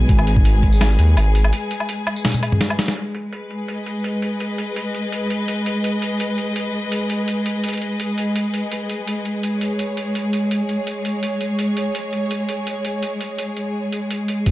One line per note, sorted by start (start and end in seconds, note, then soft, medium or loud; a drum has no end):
0.00 2.95 G#3 medium
0.00 2.97 G#4 medium
0.00 2.97 B4 medium
0.00 2.99 G#5 medium
0.09 0.98 G#1 loud
0.09 kick loud
0.09 closed hi-hat medium
0.19 low woodblock medium
0.27 closed hi-hat medium
0.37 kick loud
0.45 closed hi-hat medium
0.63 kick medium
0.63 closed hi-hat soft
0.72 tambourine medium
0.81 snare loud
0.81 closed hi-hat medium
0.81 low woodblock medium
0.99 1.16 D#2 medium
0.99 closed hi-hat medium
1.17 1.52 G#1 loud
1.17 closed hi-hat medium
1.17 low woodblock medium
1.35 closed hi-hat medium
1.35 tambourine soft
1.44 low woodblock medium
1.53 closed hi-hat medium
1.71 closed hi-hat medium
1.80 low woodblock medium
1.89 closed hi-hat medium
2.07 closed hi-hat soft
2.07 low woodblock medium
2.16 tambourine medium
2.25 snare loud
2.25 closed hi-hat soft
2.25 high tom medium
2.27 closed hi-hat soft
2.29 closed hi-hat medium
2.32 closed hi-hat medium
2.32 high tom medium
2.32 tambourine medium
2.43 closed hi-hat medium
2.43 low woodblock medium
2.52 mid tom medium
2.61 snare medium
2.61 closed hi-hat medium
2.70 low woodblock medium
2.79 snare loud
2.79 closed hi-hat medium
2.79 tambourine soft
2.88 snare medium
2.97 14.51 G#3 medium
2.97 closed hi-hat medium
3.15 closed hi-hat medium
3.28 10.39 B4 medium
3.33 closed hi-hat medium
3.51 14.51 G#4 medium
3.51 closed hi-hat soft
3.68 closed hi-hat medium
3.74 9.67 D#5 medium
3.86 closed hi-hat medium
4.04 closed hi-hat medium
4.22 closed hi-hat medium
4.40 closed hi-hat medium
4.58 closed hi-hat medium
4.76 closed hi-hat medium
4.95 closed hi-hat soft
5.12 closed hi-hat medium
5.30 closed hi-hat medium
5.48 closed hi-hat medium
5.66 closed hi-hat medium
5.84 closed hi-hat medium
6.02 closed hi-hat medium
6.20 closed hi-hat medium
6.38 closed hi-hat soft
6.56 closed hi-hat medium
6.92 closed hi-hat medium
7.10 closed hi-hat medium
7.28 closed hi-hat medium
7.46 closed hi-hat medium
7.64 closed hi-hat medium
7.68 closed hi-hat medium
7.73 closed hi-hat soft
7.78 closed hi-hat soft
7.82 closed hi-hat soft
8.00 closed hi-hat medium
8.18 closed hi-hat medium
8.36 closed hi-hat medium
8.54 closed hi-hat medium
8.72 closed hi-hat medium
8.89 closed hi-hat medium
9.08 closed hi-hat medium
9.25 closed hi-hat soft
9.43 closed hi-hat medium
9.57 10.27 C#5 medium
9.61 closed hi-hat medium
9.79 closed hi-hat medium
9.97 closed hi-hat medium
10.15 closed hi-hat medium
10.28 14.46 C#5 medium
10.33 closed hi-hat medium
10.51 closed hi-hat medium
10.69 closed hi-hat soft
10.87 closed hi-hat medium
11.05 closed hi-hat medium
11.23 closed hi-hat medium
11.41 closed hi-hat medium
11.59 closed hi-hat medium
11.77 closed hi-hat medium
11.95 closed hi-hat medium
12.13 closed hi-hat soft
12.31 closed hi-hat medium
12.49 closed hi-hat medium
12.67 closed hi-hat medium
12.85 closed hi-hat medium
13.03 closed hi-hat medium
13.21 closed hi-hat medium
13.39 closed hi-hat medium
13.57 closed hi-hat soft
13.93 closed hi-hat medium
14.11 closed hi-hat medium
14.28 closed hi-hat medium
14.46 14.51 G#1 loud
14.46 kick loud
14.46 closed hi-hat medium